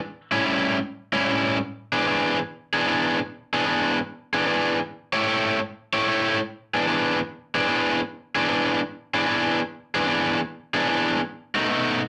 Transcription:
0.31 A2 G3 C#4 E4
0.45 A2 G3 C#4 E4
1.13 A2 G3 C#4 E4
1.25 A2 G3 C#4 E4
1.92 E3 B3 D4 G#4
2.06 E3 B3 D4 G#4
2.73 E3 B3 D4 G#4
2.86 E3 B3 D4 G#4
3.53 E3 B3 D4 G#4
3.66 E3 B3 D4 G#4
4.33 E3 B3 D4 G#4
4.46 E3 B3 D4 G#4
5.13 A3 E4 G4 C#5
5.27 A3 E4 G4 C#5
5.93 A3 E4 G4 C#5
6.08 A3 E4 G4 C#5
6.74 E3 B3 D4 G#4
6.87 E3 B3 D4 G#4
7.54 E3 B3 D4 G#4
7.68 E3 B3 D4 G#4
8.35 E3 B3 D4 G#4
8.48 E3 B3 D4 G#4
9.14 E3 B3 D4 G#4
9.27 E3 B3 D4 G#4
9.94 E3 B3 D4 G#4
10.07 E3 B3 D4 G#4
10.74 E3 B3 D4 G#4
10.87 E3 B3 D4 G#4
11.54 B2 A3 D#4 F#4
11.69 B2 A3 D#4 F#4

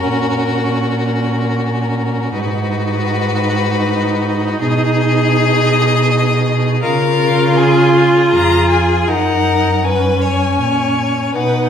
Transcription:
Already playing: C#4 F#4 A#4
0.06 A#2
2.33 G#2 D#4 F#4 B4
4.60 B2 G#4 D#5
6.82 C#3 F4 A#4 F5
7.57 G#4 G#5
7.94 G#4
8.31 F2 A#5
8.69 G#5
9.08 F#2 D#4 A#4 F#5
9.84 C#4 B4 G#5
10.21 C#5
10.60 A#2 C#5
11.34 B2 D#4 B4 F#5

